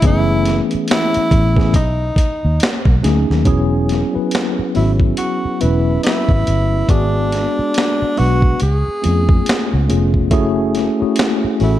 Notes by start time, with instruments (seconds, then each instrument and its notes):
0.02 fingered electric bass F#1, tine electric piano E3 G#3 B3 C#4 G#4, kick, closed hi-hat
0.06 tine electric piano A3, tenor saxophone E4
0.45 snare, closed hi-hat
0.71 muted fingered electric bass stroke, closed hi-hat
0.88 tenor saxophone E4, snare, closed hi-hat
0.92 finger snap
1.14 muted fingered electric bass stroke, closed hi-hat
1.31 fingered electric bass A1, kick, closed hi-hat
1.56 tine electric piano E3 A3 B3 C#4 G#4, kick, snare
1.74 fingered electric bass B1, tenor saxophone D#4, kick, closed hi-hat
2.16 muted fingered electric bass stroke, kick, closed hi-hat
2.45 fingered electric bass D#2
2.60 finger snap, snare, closed hi-hat
2.85 fingered electric bass B1, kick
3.02 fingered electric bass D2, tine electric piano F#3 A3 C#4 D#4 G#4, snare, closed hi-hat
3.30 fingered electric bass D#2, snare
3.45 fingered electric bass E1, tine electric piano F#3 B3 C#4 E4 G#4, kick, closed hi-hat
3.89 snare, closed hi-hat
4.13 tine electric piano F#3 B3 C#4 E4 B4, muted fingered electric bass stroke
4.31 snare, closed hi-hat
4.35 finger snap
4.59 muted fingered electric bass stroke
4.74 fingered electric bass G#1, tine electric piano F#3 B3 C#4 E4 F#4, tenor saxophone E4, open hi-hat
5.00 kick
5.17 tenor saxophone F#4, closed hi-hat
5.45 muted fingered electric bass stroke
5.60 fingered electric bass E1, tine electric piano F#3 B3 C#4 E4 B4, tenor saxophone E4, closed hi-hat
6.03 tenor saxophone E4, finger snap, snare, closed hi-hat
6.29 fingered electric bass G#1, kick
6.47 fingered electric bass G1, closed hi-hat
6.88 fingered electric bass G#1, tine electric piano G#3 B3 D4 F#4 G#4, tenor saxophone D4, kick, closed hi-hat
7.32 snare, closed hi-hat
7.59 muted fingered electric bass stroke
7.74 snare, closed hi-hat
7.78 finger snap
8.02 muted fingered electric bass stroke
8.17 fingered electric bass B1, tine electric piano G#3 B3 D4 F#4 B4, tenor saxophone F#4, open hi-hat
8.42 kick
8.60 fingered electric bass C#2, tenor saxophone G#4, closed hi-hat
8.88 muted fingered electric bass stroke
9.02 fingered electric bass F2, tine electric piano A3 B3 C#4 F4 G#4, closed hi-hat
9.29 kick
9.46 finger snap, snare, closed hi-hat
9.74 fingered electric bass C#2
9.88 fingered electric bass F1, tine electric piano A3 B3 C#4 F4 G#4, closed hi-hat
10.14 kick
10.31 fingered electric bass F#1, tine electric piano A3 C#4 E4 F#4 G#4, kick, closed hi-hat
10.75 snare, closed hi-hat
11.00 tine electric piano A3 C#4 E4 F#4 G#4, muted fingered electric bass stroke
11.16 snare, closed hi-hat
11.20 finger snap
11.44 muted fingered electric bass stroke
11.60 fingered electric bass A1, tine electric piano A3 C#4 E4 F#4 A4, tenor saxophone E4, open hi-hat